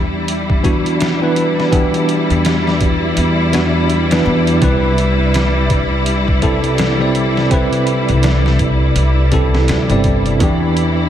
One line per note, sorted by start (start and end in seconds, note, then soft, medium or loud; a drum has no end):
0.00 2.26 E2 loud
0.00 0.60 E3 medium
0.00 10.42 G3 medium
0.00 0.61 B3 medium
0.00 0.62 D4 medium
0.00 11.09 D4 medium
0.00 10.41 E4 medium
0.00 0.62 G4 loud
0.00 11.09 D5 medium
0.28 closed hi-hat medium
0.50 kick medium
0.63 1.16 E3 medium
0.63 1.17 B3 medium
0.63 1.17 D4 medium
0.63 1.17 F#4 medium
0.63 kick medium
0.63 closed hi-hat medium
0.86 closed hi-hat soft
1.01 snare loud
1.01 closed hi-hat medium
1.22 1.69 E3 medium
1.22 1.69 B3 medium
1.22 1.70 D4 medium
1.22 1.70 B4 loud
1.36 closed hi-hat medium
1.60 snare soft
1.71 3.49 E3 medium
1.71 3.50 B3 medium
1.71 3.50 D4 medium
1.71 3.51 G4 loud
1.71 kick loud
1.71 closed hi-hat medium
1.94 closed hi-hat soft
2.09 closed hi-hat medium
2.30 3.14 E2 medium
2.30 closed hi-hat soft
2.45 snare loud
2.45 closed hi-hat medium
2.67 snare soft
2.81 kick loud
2.81 closed hi-hat medium
3.17 4.23 E2 loud
3.17 closed hi-hat medium
3.53 4.06 E3 medium
3.53 4.06 B3 medium
3.53 4.06 D4 medium
3.53 4.07 F#4 medium
3.53 snare loud
3.53 closed hi-hat medium
3.90 closed hi-hat medium
4.11 4.58 E3 medium
4.11 4.59 B3 medium
4.11 4.59 D4 medium
4.11 4.59 B4 loud
4.11 snare loud
4.11 closed hi-hat medium
4.26 4.58 E2 loud
4.47 closed hi-hat medium
4.61 8.05 C2 loud
4.61 6.39 C3 loud
4.61 6.39 C4 medium
4.61 6.40 E4 medium
4.61 6.40 B4 loud
4.61 kick loud
4.61 closed hi-hat medium
4.98 closed hi-hat medium
5.34 snare loud
5.34 closed hi-hat medium
5.70 kick loud
5.70 closed hi-hat medium
6.06 closed hi-hat medium
6.28 kick medium
6.42 6.95 C3 medium
6.42 6.95 C4 medium
6.42 6.96 E4 medium
6.42 6.96 A4 medium
6.42 kick loud
6.42 closed hi-hat medium
6.64 closed hi-hat soft
6.78 snare loud
6.78 closed hi-hat medium
6.99 7.47 C3 medium
6.99 7.47 C4 medium
6.99 7.48 E4 medium
6.99 7.48 D5 medium
7.15 closed hi-hat medium
7.37 snare soft
7.50 9.28 C3 medium
7.50 9.28 C4 medium
7.50 9.29 E4 medium
7.50 9.30 B4 loud
7.50 kick loud
7.50 closed hi-hat medium
7.73 closed hi-hat soft
7.87 closed hi-hat medium
8.09 8.93 C2 medium
8.09 closed hi-hat soft
8.23 snare loud
8.23 closed hi-hat medium
8.46 snare soft
8.59 kick medium
8.59 closed hi-hat medium
8.96 9.68 C2 medium
8.96 closed hi-hat medium
9.32 9.84 C3 medium
9.32 9.85 C4 medium
9.32 9.85 E4 medium
9.32 9.85 A4 medium
9.32 kick loud
9.32 closed hi-hat medium
9.55 snare medium
9.68 9.87 D2 loud
9.68 snare loud
9.68 closed hi-hat medium
9.90 10.37 G1 medium
9.90 10.37 C3 medium
9.90 10.37 C4 medium
9.90 10.38 E4 medium
9.90 10.38 D5 medium
9.90 closed hi-hat soft
10.04 kick medium
10.04 closed hi-hat medium
10.26 closed hi-hat soft
10.39 11.09 E2 loud
10.39 11.09 E3 medium
10.39 11.09 B3 medium
10.39 11.09 D4 medium
10.39 11.09 E4 medium
10.39 kick loud
10.39 closed hi-hat medium
10.43 11.09 G4 loud
10.77 closed hi-hat medium